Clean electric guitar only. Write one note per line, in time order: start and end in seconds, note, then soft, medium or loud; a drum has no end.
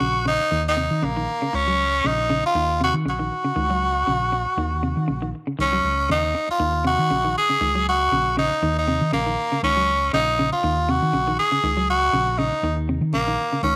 0.00 0.15 C#3 medium
0.26 0.40 C#3 medium
0.51 0.66 D#3 medium
0.77 0.92 C3 medium
1.02 1.11 C#3 medium
1.17 1.31 D#3 medium
1.42 1.48 C#3 medium
1.53 muted clean electric guitar stroke medium
1.68 1.82 F#3 medium
2.04 2.19 C#3 medium
2.30 2.44 C#3 medium
2.56 2.70 D#3 medium
2.81 2.95 C3 medium
3.06 3.14 C#3 medium
3.19 3.34 D#3 medium
3.44 3.51 C#3 medium
3.56 3.64 D#3 medium
3.70 3.85 F#3 medium
4.07 4.22 C#3 medium
4.32 muted clean electric guitar stroke medium
4.58 4.73 D#3 medium
4.83 4.98 C3 medium
5.08 5.16 C#3 medium
5.22 5.37 D#3 medium
5.47 5.54 C#3 medium
5.59 5.67 D#3 medium
5.73 5.87 F#3 medium
6.09 6.24 C#3 medium
6.35 muted clean electric guitar stroke medium
6.60 6.74 D#3 medium
6.85 6.99 C3 medium
7.11 7.19 C#3 medium
7.25 7.39 D#3 medium
7.50 7.56 C#3 medium
7.61 7.69 D#3 medium
7.75 7.90 F#3 medium
8.12 8.27 C#3 medium
8.37 8.52 C#3 medium
8.63 8.77 D#3 medium
8.88 9.02 C3 medium
9.13 9.21 C#3 medium
9.26 9.41 D#3 medium
9.52 9.58 C#3 medium
9.64 9.71 D#3 medium
9.77 9.91 F#3 medium
10.13 10.28 C#3 medium
10.39 10.53 C#3 medium
10.64 10.78 D#3 medium
10.89 11.03 C3 medium
11.13 11.21 C#3 medium
11.28 11.42 D#3 medium
11.52 11.58 C#3 medium
11.64 11.72 D#3 medium
11.77 11.91 F#3 medium
12.13 12.28 C#3 medium
12.39 12.53 C#3 medium
12.64 12.78 D#3 medium
12.89 13.03 C3 medium
13.14 13.22 C#3 medium
13.28 13.42 D#3 medium
13.53 13.59 C#3 medium
13.64 13.72 D#3 medium